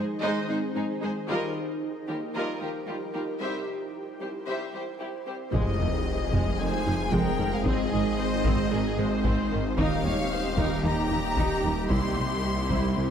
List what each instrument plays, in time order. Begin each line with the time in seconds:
Already playing: ambient pad D#3 D#4 G#4 C5, synth pluck D#4
0.22 cello section G#2, synth pluck G#3, viola section G#3 D#4, violin section C5 D#5
0.49 cello section G#2, viola section G#3 D#4, synth pluck C4, violin section G#4 C5
0.75 cello section G#2, viola section G#3 D#4, synth pluck C4, violin section D#4 G#4
1.02 cello section G#2, viola section G#3 D#4, synth pluck G#4, violin section G#4 C5
1.28 cello section D#2, synth pluck D#3, ambient pad F3 G4 A#4, viola section G3 F4, violin section A#4 D#5, taiko
2.08 cello section D#2, viola section G3 F4, synth pluck A#3, violin section G4 A#4, taiko
2.35 cello section D#2, synth pluck D#3, viola section G3 F4, violin section A#4 D#5
2.61 cello section D#2, synth pluck G3, viola section G3 F4, violin section G4 A#4
2.87 cello section D#2, synth pluck G3, viola section G3 F4, violin section F4 G4
3.14 cello section D#2, viola section G3 F4, synth pluck D#4, violin section G4 A#4
3.41 cello section C2, synth pluck C3, ambient pad G3 E4 C5, viola section G3 G4, violin section C5 E5
4.21 cello section C2, synth pluck G3, viola section G3 G4, violin section G4 C5
4.46 cello section C2, synth pluck C3, viola section G3 G4, violin section C5 E5
4.73 cello section C2, synth pluck E3, viola section G3 G4, violin section G4 C5
5.00 cello section C2, synth pluck E3, viola section G3 G4, violin section E4 G4
5.26 cello section C2, viola section G3 G4, synth pluck C4, violin section G4 C5
5.53 detuned saw bass F1, double bass section F1, cello section F2, synth pluck F3, viola section G#3 G#4, ambient pad G#3 C4 F4 C5, violin section D#5, taiko, sub drop
5.80 double bass section F1, cello section F2, viola section D#3, synth pluck C4
6.32 double bass section F1, cello section F2, synth pluck F3, viola section G#3, taiko
6.59 double bass section F1, cello section F2, viola section D#3, synth pluck D#4, violin section C5 G#5
6.85 double bass section F1, cello section F2, viola section F3, synth pluck D#4
7.12 double bass section F1, cello section F2, synth pluck F3, viola section G#3, violin section A#4 G5, taiko
7.39 double bass section F1, cello section F2, viola section D#3, synth pluck G#3
7.53 violin section F5
7.64 double bass section G#1, detuned saw bass G#1, cello section G#2, synth pluck G#3, viola section C4, ambient pad D#4 D#5, violin section G#4 D#5, taiko
7.91 double bass section G#1, cello section G#2, viola section D#3, synth pluck D#4
8.19 violin section C5
8.44 double bass section G#1, cello section G#2, synth pluck G#3, viola section C4, taiko
8.71 double bass section G#1, cello section G#2, viola section D#3, violin section G#4, synth pluck G#4
8.98 double bass section G#1, cello section G#2, viola section G#3, synth pluck G#4, violin section C5
9.24 double bass section G#1, cello section G#2, synth pluck G#3, viola section C4, taiko
9.52 double bass section G#1, cello section G#2, viola section D#3
9.78 detuned saw bass D#1, cello section D#2, double bass section D#2, synth pluck D#3, ambient pad G3 A#3, viola section D#4 G4, violin section A#4 F5, taiko
10.04 cello section D#2, double bass section D#2, viola section G3, synth pluck A#3, violin section C#5
10.31 violin section C5
10.57 cello section D#2, double bass section D#2, synth pluck D#3, viola section D#4, violin section A#4, taiko
10.84 cello section D#2, double bass section D#2, viola section G3, synth pluck D#4, violin section G4 A#5
11.10 cello section D#2, double bass section D#2, viola section A#3, synth pluck D#4
11.37 double bass section D#2, cello section D#2, synth pluck D#3, viola section D#4, taiko
11.64 cello section D#2, double bass section D#2, viola section G3, synth pluck G3
11.90 cello section C2, double bass section C2, detuned saw bass C2, synth pluck C3, ambient pad C4 E4 C5, violin section E4 C6, viola section E4, taiko
12.17 cello section C2, double bass section C2, viola section G3, synth pluck G3
12.69 double bass section C2, cello section C2, synth pluck C3, viola section E4, taiko
12.96 double bass section C2, cello section C2, viola section G3, synth pluck C4